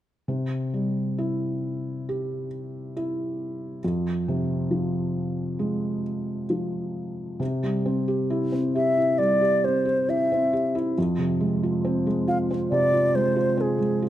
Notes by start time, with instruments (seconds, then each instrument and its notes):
0.28 felt piano C3
0.74 felt piano G3
1.18 felt piano E4
2.09 felt piano G4
2.97 felt piano E4
3.84 felt piano F2
4.28 felt piano C3
4.71 felt piano F3
5.59 felt piano G#3
6.50 felt piano F3
7.40 felt piano C3
7.63 felt piano G3
7.86 felt piano C4
8.08 felt piano G4
8.30 felt piano E4
8.52 felt piano C4
8.75 felt piano G4, flute E5
8.97 felt piano E4
9.18 felt piano G3, flute D5
9.41 felt piano G4
9.64 felt piano C4, flute C5
9.85 felt piano G4
10.08 felt piano E4, flute E5
10.32 felt piano C4
10.53 felt piano G4
10.75 felt piano E4
10.98 felt piano F2
11.19 felt piano C3
11.41 felt piano G#3
11.63 felt piano F4
11.85 felt piano C4
12.07 felt piano G#3
12.28 felt piano F4, flute F5
12.51 felt piano C4
12.70 felt piano C3, flute D5
12.93 felt piano F4
13.15 felt piano G#3, flute C5
13.36 felt piano F4
13.57 felt piano C4, flute G#4
13.79 felt piano G#3
14.02 felt piano F4